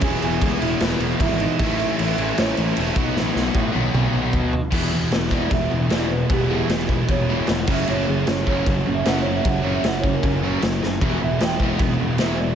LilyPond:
<<
  \new Staff \with { instrumentName = "Marimba" } { \time 4/4 \key b \mixolydian \tempo 4 = 153 <gis' gis''>8 <gis' gis''>4 <e' e''>4. <e' e''>8 <dis' dis''>8 | <e' e''>8 <e' e''>4. <cis' cis''>4. <dis' dis''>8~ | <dis' dis''>2. r4 | \key e \lydian r4. d''8 e''4 d''8 b'8 |
g'8 gis'4 r8 cis''4. e''8 | cis''8 gis'8 cis''8 cis''8 \tuplet 3/2 { r4 e''8 fis''8 cis''8 e''8 } | \tuplet 3/2 { fis''8 cis''8 e''8 fis''8 cis''8 ais'8~ } ais'4. r8 | r8 e''8 g''2 e''8 d''8 | }
  \new Staff \with { instrumentName = "Distorted electric guitar" } { \time 4/4 \key b \mixolydian <e gis b e'>4. <e gis b e'>2~ <e gis b e'>8 | <a, e a cis' e'>4. <a, e a cis' e'>2 <b, dis fis b dis'>8~ | <b, dis fis b dis'>4 <b, dis fis b dis'>2~ <b, dis fis b dis'>8 r8 | \key e \lydian <e gis b e'>1 |
<e gis b e'>2.~ <e gis b e'>8 <fis ais cis' fis'>8~ | <fis ais cis' fis'>2.~ <fis ais cis' fis'>8 <fis ais cis' fis'>8~ | <fis ais cis' fis'>2.~ <fis ais cis' fis'>8 r8 | <e gis b e'>1 | }
  \new Staff \with { instrumentName = "Distorted electric guitar" } { \clef bass \time 4/4 \key b \mixolydian <e, b, e>1 | <a, e a>2.~ <a, e a>8 <b, fis b>8~ | <b, fis b>2.~ <b, fis b>8 r8 | \key e \lydian <e, b, e>8 <e, b,>8 <e, b,>8 <e, b, e>8 <e, b,>8 <e, b,>8 <e, b, e>8 <e, b,>8 |
<e, b,>8 <e, b, e>8 <e, b,>8 <e, b,>8 <e, b,>8 <e, b, e>8 <e, b,>8 <fis, cis fis>8 | <fis, cis fis>8 <fis, cis>8 <fis, cis>8 <fis, cis fis>8 <fis, cis>8 <fis, cis>8 <fis, cis fis>8 <fis, cis>8 | <fis, cis>8 <fis, cis fis>8 <fis, cis>8 <fis, cis>8 <fis, cis>8 <fis, cis fis>8 <fis, cis>8 <fis, cis>8 | <e, b, e>8 <e, b,>8 <e, b,>8 <e, b, e>8 <e, b,>8 <e, b,>8 <e, b, e>8 <e, b,>8 | }
  \new Staff \with { instrumentName = "Overdriven electric guitar" } { \clef bass \time 4/4 \key b \mixolydian <e, b, e>2 <e, b, e>2 | <a, e a>2 <a, e a>4. <b, fis b>8~ | <b, fis b>4. <b, fis b>2 r8 | \key e \lydian <e, b, e>8 <e, b,>8 <e, b,>8 <e, b, e>8 <e, b,>8 <e, b,>8 <e, b, e>8 <e, b,>8 |
<e, b,>8 <e, b, e>8 <e, b,>8 <e, b,>8 <e, b,>8 <e, b, e>8 <e, b,>8 <fis, cis fis>8 | <fis, cis fis>8 <fis, cis>8 <fis, cis>8 <fis, cis fis>8 <fis, cis>8 <fis, cis>8 <fis, cis fis>8 <fis, cis>8 | <fis, cis>8 <fis, cis fis>8 <fis, cis>8 <fis, cis>8 <fis, cis>8 <fis, cis fis>8 <fis, cis>8 <fis, cis>8 | <e, b, e>8 <e, b,>8 <e, b,>8 <e, b, e>8 <e, b,>8 <e, b,>8 <e, b, e>8 <e, b,>8 | }
  \new Staff \with { instrumentName = "Picked electric bass" } { \clef bass \time 4/4 \key b \mixolydian e,,8 e,,8 cis,8 e,,8 e,,8 e,,8 gis,,4 | a,,4 a,,8 a,,8 a,,8 a,,8 e,,8 b,,8 | a,,8 b,,8 a,8 b,,8 b,,8 b,,8 b,4 | \key e \lydian e,,8 e,,8 e,,8 e,,8 e,,8 e,,8 e,,4 |
e,,4 e,,4 e,,4 e,,8 fis,,8 | fis,,8 fis,,8 fis,,8 fis,,8 fis,,8 fis,,8 fis,,4 | fis,,4 fis,,4 fis,,4 fis,,8 fis,,8 | e,,8 e,,8 e,,8 e,,8 e,,8 e,,8 e,,4 | }
  \new DrumStaff \with { instrumentName = "Drums" } \drummode { \time 4/4 <cymc bd>8 cymc8 <cymc bd>8 cymc8 <cymc sn>8 cymc8 <cymc bd>8 cymc8 | <cymc bd>8 cymc8 cymc8 cymc8 <cymc sn>8 cymc8 cymc8 <cymc bd>8 | sn8 sn8 bd8 tommh8 toml4 <bd tomfh>8 tomfh8 | <cymc bd>4 <cymc sn>8 bd8 <cymc bd>4 <cymc sn>4 |
<cymc bd>4 <cymc sn>8 bd8 <cymc bd>4 <cymc sn>8 <cymc bd>8 | cymc4 <cymc sn>8 bd8 <cymc bd>4 <cymc sn>4 | <cymc bd>4 <cymc sn>8 bd8 <cymc bd>4 <cymc sn>8 sn8 | <cymc bd>4 <cymc sn>8 bd8 <cymc bd>4 <cymc sn>4 | }
>>